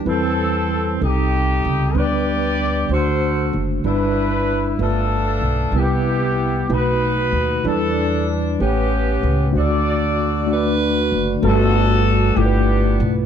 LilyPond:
<<
  \new Staff \with { instrumentName = "Horn section" } { \time 6/8 \key g \major \tempo 4. = 63 << { a'4. g'4. | d''4. c''4 r8 | b'4. a'4. | g'4. b'4. |
a'4 r8 g'4. | d''4. b'4. | a'4. g'4 r8 | } \\ { c'4. ees'4. | <g' b'>4. <fis' a'>4. | <d' e'>4. <d' f'>4. | <b e'>4. <dis' fis'>4. |
d'4. <b cis'>4. | <fis' a'>4. <d' fis'>4. | <d' fis'>4. <b d'>4. | } >> }
  \new Staff \with { instrumentName = "Tine electric piano" } { \time 6/8 \key g \major <g c' e' b'>4 r8 <g c' ees' a'>4 r8 | <g b d' b'>4 r8 <a d' fis' c''>4 r8 | <g d' e' b'>4 r8 <a f' b' e''>4 r8 | <g b e' bes' b'>4 r8 <a dis' fis' b'>4 r8 |
<g d' e' b'>4 r8 <a cis' g' a' b'>4 r8 | <a d' fis' c'' d''>4 r8 <a d' fis' d''>4 r8 | <g a fis' b'>4 r8 <a e' f' a' b'>4 r8 | }
  \new Staff \with { instrumentName = "Tine electric piano" } { \clef bass \time 6/8 \key g \major e4. c4. | d4. d4. | g,4. g,4. | c4. b,4. |
e4. a,4. | d4. r4. | g,4. g,4. | }
  \new Staff \with { instrumentName = "Upright bass" } { \clef bass \time 6/8 \key g \major e,4. c,4 cis,8 | d,4. d,4 fis,,8 | g,,4. g,,4 b,,8 | c,4. b,,4 dis,8 |
e,4. a,,4 cis,8 | d,2~ d,8 fis,,8 | g,,4. g,,4 b,,8 | }
>>